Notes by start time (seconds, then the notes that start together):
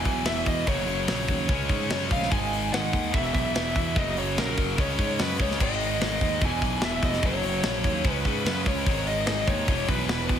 Already playing: E2 B2 E3 G#5
0.05 B1, kick, open hi-hat
0.25 E1 E5, snare, open hi-hat
0.46 E2 D#5, kick, open hi-hat
0.66 F#1 F#2 C#3 F#3 C#5, kick, open hi-hat
0.86 F#1, open hi-hat
1.07 A#1, snare, open hi-hat
1.28 D#2, kick, open hi-hat
1.48 C#2 C#3 G#3 C#4, kick, open hi-hat
1.69 G#2, kick, open hi-hat
1.90 F#2, snare, open hi-hat
2.11 A#1 F5, kick, open hi-hat
2.23 snare
2.31 G#1 G#2 D#3 G#3 G#5, kick, open hi-hat
2.53 open hi-hat
2.73 G#1 F#5, snare, open hi-hat
2.93 D#2, kick, open hi-hat
3.13 E1 E2 B2 E3 E5, kick, open hi-hat
3.34 B1 E5, kick, open hi-hat
3.55 E1, snare, open hi-hat
3.76 E2, kick, open hi-hat
3.95 F#1 F#2 C#3 D#5, kick, open hi-hat
3.99 F#3
4.17 F#1 C#5, open hi-hat
4.37 A#1 A#4, snare, open hi-hat
4.57 F#1, kick, open hi-hat
4.78 C#2 C#3 G#3 C#4 C#5, kick, open hi-hat
4.99 G#2, kick, open hi-hat
5.19 F#2 B4, snare, open hi-hat
5.40 C#2 C#5, kick, open hi-hat
5.51 snare
5.59 G#1 G#2 D#3 G#3 D#5, kick, crash
5.80 open hi-hat
6.01 G#1, snare, open hi-hat
6.21 D#2, kick, open hi-hat
6.41 E1 E2 B2 G#5, kick, open hi-hat
6.45 E3
6.62 B1, kick, open hi-hat
6.82 E1 E5, snare
7.02 F1 D#5, kick, open hi-hat
7.13 snare
7.22 F#1 F#2 C#3, kick, open hi-hat
7.26 F#3 C#5
7.43 F#1, open hi-hat
7.63 A#1, snare, open hi-hat
7.84 D#2, kick, open hi-hat
8.04 C#2 C#3 G#3, kick, open hi-hat
8.09 C#4 B4
8.24 G#2, kick, open hi-hat
8.45 F#2 B4, snare, open hi-hat
8.66 C#2 C#5, kick, open hi-hat
8.86 G#1 G#2 D#3 G#3, kick, open hi-hat
9.07 D#5, open hi-hat
9.26 G#1 D#5, snare, open hi-hat
9.47 D#2 C#5, kick, open hi-hat
9.66 E1 E2 B2, kick, open hi-hat
9.71 E3
9.89 B1 B4, kick, open hi-hat
10.09 E1 B4, snare, open hi-hat
10.29 E2, kick, open hi-hat